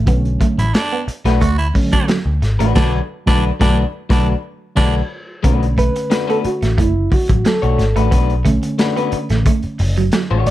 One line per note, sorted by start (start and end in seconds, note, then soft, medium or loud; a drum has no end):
0.06 0.36 B1 loud
0.06 0.64 D3 medium
0.06 0.64 F#3 medium
0.06 0.64 A3 medium
0.06 0.21 B3 medium
0.06 0.65 C#4 medium
0.06 kick loud
0.06 closed hi-hat medium
0.25 closed hi-hat soft
0.41 0.55 A3 medium
0.41 kick medium
0.41 closed hi-hat medium
0.58 0.72 A1 medium
0.58 0.76 E4 loud
0.58 muted clean electric guitar stroke soft
0.58 closed hi-hat medium
0.74 1.01 D4 loud
0.74 snare loud
0.74 closed hi-hat medium
0.92 1.05 B3 medium
1.08 muted picked electric bass stroke soft
1.08 muted clean electric guitar stroke soft
1.08 closed hi-hat medium
1.25 1.39 B1 medium
1.25 1.38 A3 medium
1.25 1.45 A3 medium
1.25 1.45 D4 medium
1.25 1.45 F#4 medium
1.25 1.45 B4 medium
1.25 snare soft
1.25 closed hi-hat soft
1.41 1.70 D2 medium
1.41 1.55 A3 loud
1.41 1.55 F#4 loud
1.41 kick medium
1.41 closed hi-hat medium
1.58 1.68 E4 medium
1.58 closed hi-hat soft
1.74 2.17 D3 medium
1.74 2.18 F#3 medium
1.74 2.18 A3 medium
1.74 2.18 C#4 medium
1.74 muted clean electric guitar stroke soft
1.74 kick loud
1.74 open hi-hat medium
1.92 2.05 F#3 medium
1.92 2.05 D4 loud
1.92 kick loud
1.92 closed hi-hat medium
2.08 2.22 F#3 medium
2.08 snare loud
2.08 closed hi-hat medium
2.26 2.40 D2 medium
2.42 2.58 G#1 loud
2.42 muted clean electric guitar stroke soft
2.42 snare soft
2.42 closed hi-hat medium
2.59 2.74 A1 medium
2.59 2.75 A3 medium
2.59 2.72 A3 medium
2.59 2.74 D4 medium
2.59 2.74 F#4 medium
2.59 2.74 B4 medium
2.59 closed hi-hat medium
2.75 2.99 B1 loud
2.75 2.98 D3 loud
2.75 2.99 F#3 medium
2.75 2.99 A3 loud
2.75 2.93 D4 medium
2.75 2.99 D4 loud
2.75 2.99 F#4 loud
2.75 2.99 B4 loud
2.75 kick loud
2.75 snare loud
2.75 crash medium
3.26 3.50 B1 medium
3.26 3.49 D3 medium
3.26 3.49 F#3 loud
3.26 3.50 A3 loud
3.26 3.50 A3 medium
3.26 3.44 D4 loud
3.26 3.50 D4 medium
3.26 3.50 F#4 medium
3.26 3.50 B4 loud
3.26 kick loud
3.26 snare loud
3.60 3.83 B1 loud
3.60 3.83 D3 loud
3.60 3.83 F#3 loud
3.60 3.83 A3 loud
3.60 3.83 D4 loud
3.60 3.78 D4 loud
3.60 3.83 F#4 loud
3.60 3.83 B4 loud
3.60 kick loud
3.60 snare loud
4.09 4.33 B1 loud
4.09 4.33 D3 loud
4.09 4.33 F#3 loud
4.09 4.33 A3 loud
4.09 4.33 A3 medium
4.09 4.33 D4 loud
4.09 4.28 D4 medium
4.09 4.33 F#4 loud
4.09 4.34 B4 loud
4.09 kick loud
4.09 snare loud
4.76 5.00 B1 loud
4.76 4.99 D3 loud
4.76 5.00 F#3 medium
4.76 5.00 A3 medium
4.76 5.00 D4 medium
4.76 4.94 D4 loud
4.76 5.00 F#4 loud
4.76 5.00 B4 medium
4.76 kick loud
4.76 snare loud
4.76 crash medium
5.43 5.88 B1 loud
5.43 8.08 D3 medium
5.43 5.64 A3 loud
5.43 8.08 A3 medium
5.43 5.58 B3 medium
5.43 8.09 C#4 medium
5.43 5.65 D4 loud
5.43 5.65 F#4 loud
5.43 5.65 B4 loud
5.43 kick loud
5.43 closed hi-hat medium
5.63 closed hi-hat soft
5.78 5.92 A3 medium
5.78 6.26 B4 loud
5.78 kick medium
5.78 closed hi-hat medium
5.96 muted clean electric guitar stroke soft
5.96 closed hi-hat medium
6.10 6.27 A3 medium
6.10 6.27 D4 medium
6.10 6.27 F#4 medium
6.10 6.26 B4 medium
6.10 snare loud
6.10 closed hi-hat loud
6.27 6.48 A3 medium
6.27 6.42 B3 medium
6.27 6.48 D4 medium
6.27 6.48 F#4 medium
6.27 6.37 A4 loud
6.27 6.47 B4 medium
6.27 closed hi-hat soft
6.44 6.80 F#4 medium
6.44 muted picked electric bass stroke soft
6.44 muted clean electric guitar stroke soft
6.44 closed hi-hat medium
6.62 6.76 A1 medium
6.62 6.75 A3 medium
6.62 snare soft
6.62 closed hi-hat medium
6.78 7.07 F#1 loud
6.78 6.92 A3 medium
6.78 7.14 E4 medium
6.78 kick loud
6.78 closed hi-hat medium
7.12 7.47 F#4 medium
7.12 muted clean electric guitar stroke soft
7.12 kick loud
7.12 open hi-hat medium
7.29 7.43 A1 medium
7.29 7.42 F#3 medium
7.29 kick medium
7.29 closed hi-hat medium
7.45 7.59 F#3 medium
7.45 8.09 A4 medium
7.45 snare loud
7.45 closed hi-hat medium
7.62 7.77 B1 medium
7.62 7.82 A3 medium
7.62 7.82 D4 medium
7.62 7.82 F#4 medium
7.62 7.82 C#5 medium
7.62 closed hi-hat soft
7.78 7.94 G#1 medium
7.78 muted clean electric guitar stroke soft
7.78 snare soft
7.78 closed hi-hat medium
7.96 8.10 A1 loud
7.96 8.08 A3 medium
7.96 8.11 A3 medium
7.96 8.12 D4 medium
7.96 8.11 F#4 medium
7.96 8.11 B4 medium
7.96 closed hi-hat medium
8.11 8.56 B1 loud
8.11 8.33 A3 medium
8.11 8.25 B3 medium
8.11 8.33 D4 loud
8.11 8.33 F#4 loud
8.11 8.34 B4 loud
8.11 kick loud
8.11 closed hi-hat loud
8.30 closed hi-hat soft
8.45 10.51 D3 medium
8.45 8.59 A3 medium
8.45 10.51 A3 medium
8.45 10.51 C#4 medium
8.45 kick loud
8.45 closed hi-hat medium
8.63 muted clean electric guitar stroke soft
8.63 closed hi-hat medium
8.78 8.95 A3 medium
8.78 8.96 D4 medium
8.78 8.96 F#4 medium
8.78 8.96 B4 medium
8.78 snare loud
8.78 closed hi-hat medium
8.96 9.17 A3 medium
8.96 9.09 B3 medium
8.96 9.16 D4 medium
8.96 9.16 F#4 medium
8.96 9.16 B4 medium
8.96 closed hi-hat soft
9.12 muted picked electric bass stroke medium
9.12 muted clean electric guitar stroke soft
9.12 closed hi-hat medium
9.30 9.44 A1 medium
9.30 9.43 A3 medium
9.30 snare soft
9.30 closed hi-hat soft
9.46 9.60 A3 medium
9.46 kick loud
9.46 closed hi-hat medium
9.62 muted picked electric bass stroke medium
9.62 closed hi-hat soft
9.79 10.09 F#1 medium
9.79 muted clean electric guitar stroke soft
9.79 open hi-hat medium
9.97 10.10 F#3 medium
9.97 closed hi-hat medium
10.12 10.27 F#3 medium
10.12 snare loud
10.12 closed hi-hat medium
10.31 10.45 A1 medium
10.31 10.50 A3 medium
10.31 10.50 D4 medium
10.31 10.50 F#4 medium
10.31 10.50 C#5 medium
10.46 10.51 G#1 medium
10.46 10.51 D5 loud
10.46 muted clean electric guitar stroke soft
10.46 snare soft
10.46 closed hi-hat medium